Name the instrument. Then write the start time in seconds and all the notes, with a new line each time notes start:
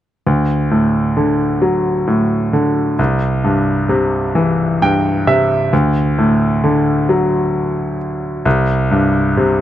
grand piano
0.27 D2
0.71 A2
1.17 D3
1.62 F#3
2.07 A2
2.53 D3
2.99 C2
3.44 G2
3.89 C3
4.35 E3
4.82 G2 G5
5.27 C3 E5
5.73 D2
6.18 A2
6.64 D3
7.09 F#3
8.45 C2
8.91 G2
9.37 C3